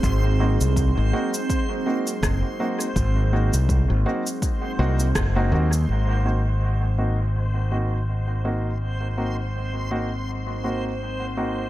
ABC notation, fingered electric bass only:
X:1
M:4/4
L:1/16
Q:"Swing 16ths" 1/4=82
K:Abmix
V:1 name="Fingered electric bass" clef=bass
A,,,3 C,,2 A,,, z6 G,,, z3 | A,,,3 C,,2 A,,, z4 C,,2 G,,,2 E,,2 | A,,,16- | A,,,16 |]